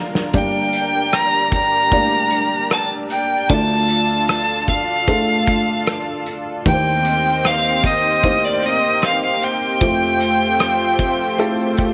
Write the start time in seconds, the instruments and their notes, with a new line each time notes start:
Already playing: felt piano D2 D3 A#3 D4 F4 D5, analog synth pad D4 F4 A#4
0.15 snare
0.33 felt piano G1 G2 A#3 D4 G4 D5, analog synth pad G4, violin G5, kick, closed hi-hat
0.73 closed hi-hat
1.13 violin A#5, cross-stick, closed hi-hat
1.52 violin A#5, kick, closed hi-hat
1.91 felt piano A#3 D4 G4 D5, kick, closed hi-hat
2.31 closed hi-hat
2.70 violin A5, cross-stick, closed hi-hat
3.10 violin G5, closed hi-hat
3.49 felt piano D2 D3 A3 D4 F4 D5, analog synth pad F4 A4, violin A5, kick, closed hi-hat
3.88 closed hi-hat
4.29 violin A5, cross-stick, closed hi-hat
4.68 violin F5, kick, closed hi-hat
5.07 felt piano A3 D4 F4 A4, kick, closed hi-hat
5.47 kick, closed hi-hat
5.87 cross-stick, closed hi-hat
6.26 closed hi-hat
6.66 felt piano D#2 D#3 A#3 D#4 G4 B4, analog synth pad A#3 C4 D#4 G4 C5, violin G5, kick, closed hi-hat
6.73 felt piano C5
7.05 closed hi-hat
7.45 violin F5, cross-stick, closed hi-hat
7.84 violin D#5, kick, closed hi-hat
8.23 felt piano A#3 D#4 G4 C5, kick, closed hi-hat
8.45 violin D5
8.62 violin D#5, closed hi-hat
9.02 violin F5, cross-stick, closed hi-hat
9.25 violin F5
9.42 violin G5, closed hi-hat
9.81 felt piano F1 F2 A3 F4 G4 C5, analog synth pad A3 C4 F4 C5, kick, closed hi-hat
10.20 closed hi-hat
10.60 cross-stick, closed hi-hat
10.99 kick, closed hi-hat
11.38 felt piano A3 F4 G4 A4, closed hi-hat
11.77 kick, closed hi-hat